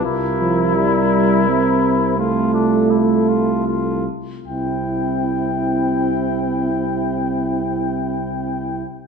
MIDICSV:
0, 0, Header, 1, 6, 480
1, 0, Start_track
1, 0, Key_signature, 0, "major"
1, 0, Tempo, 500000
1, 8707, End_track
2, 0, Start_track
2, 0, Title_t, "Flugelhorn"
2, 0, Program_c, 0, 56
2, 37, Note_on_c, 0, 70, 53
2, 2052, Note_off_c, 0, 70, 0
2, 2097, Note_on_c, 0, 69, 42
2, 3908, Note_off_c, 0, 69, 0
2, 4290, Note_on_c, 0, 64, 31
2, 8488, Note_off_c, 0, 64, 0
2, 8707, End_track
3, 0, Start_track
3, 0, Title_t, "Trumpet"
3, 0, Program_c, 1, 56
3, 51, Note_on_c, 1, 64, 57
3, 2059, Note_off_c, 1, 64, 0
3, 2103, Note_on_c, 1, 65, 47
3, 2435, Note_off_c, 1, 65, 0
3, 2440, Note_on_c, 1, 62, 41
3, 2787, Note_on_c, 1, 64, 34
3, 2801, Note_off_c, 1, 62, 0
3, 3154, Note_on_c, 1, 65, 39
3, 3169, Note_off_c, 1, 64, 0
3, 3525, Note_off_c, 1, 65, 0
3, 3529, Note_on_c, 1, 65, 29
3, 3903, Note_off_c, 1, 65, 0
3, 4294, Note_on_c, 1, 79, 33
3, 8492, Note_off_c, 1, 79, 0
3, 8707, End_track
4, 0, Start_track
4, 0, Title_t, "French horn"
4, 0, Program_c, 2, 60
4, 0, Note_on_c, 2, 65, 53
4, 712, Note_on_c, 2, 64, 47
4, 726, Note_off_c, 2, 65, 0
4, 1930, Note_off_c, 2, 64, 0
4, 2093, Note_on_c, 2, 65, 52
4, 3907, Note_off_c, 2, 65, 0
4, 4288, Note_on_c, 2, 64, 36
4, 8486, Note_off_c, 2, 64, 0
4, 8707, End_track
5, 0, Start_track
5, 0, Title_t, "Euphonium"
5, 0, Program_c, 3, 58
5, 389, Note_on_c, 3, 53, 64
5, 726, Note_on_c, 3, 55, 56
5, 741, Note_off_c, 3, 53, 0
5, 1421, Note_on_c, 3, 60, 62
5, 1435, Note_off_c, 3, 55, 0
5, 2094, Note_off_c, 3, 60, 0
5, 2100, Note_on_c, 3, 57, 62
5, 3874, Note_off_c, 3, 57, 0
5, 4298, Note_on_c, 3, 60, 41
5, 8496, Note_off_c, 3, 60, 0
5, 8707, End_track
6, 0, Start_track
6, 0, Title_t, "Bass trombone"
6, 0, Program_c, 4, 57
6, 51, Note_on_c, 4, 36, 49
6, 3909, Note_off_c, 4, 36, 0
6, 4296, Note_on_c, 4, 36, 32
6, 8494, Note_off_c, 4, 36, 0
6, 8707, End_track
0, 0, End_of_file